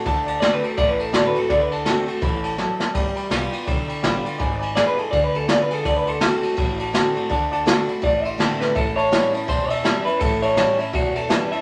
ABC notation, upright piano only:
X:1
M:4/4
L:1/8
Q:"Swing" 1/4=165
K:Dmix
V:1 name="Upright piano"
[dfa] [dfa] [dfc'] [dfa] [dfa] [dfa] [dfa] [dfa] | [dfb] [dfa] [fa] [dfa] [dfa] [dfa] [dfa] [dfa] | [dgb] [dgb] [dg] [dgb] [dgb] [dgb] [dgb] [dgb] | [d^gb] [dgb] [dg] [dgb] [dgd'] [dgb] [dg^c'] [dgb] |
[dfa] [dfc'] a [dfa] [dfa] [dfa] [dfa] [dfa] | [dfa] [dfa] [da] [dfb] [dfa] [dfc'] [dfa] [dfa] | [^cea] [cea] [ea] [cea] [cea] [cea] [cea] [ceb] | [^cea] [cea] [ea] [cea] [cea] [cea] [cea] [cea] |]